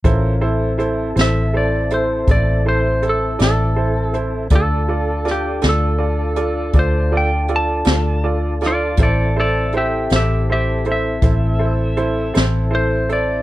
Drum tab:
HH |x-xx-xx-xx-x|x-xx-xx-xx-x|x-xx-xx-xx-x|
SD |---o-----o--|--oo-----o-o|---o-----o--|
BD |o-----o-----|o-----o-----|o-----o-----|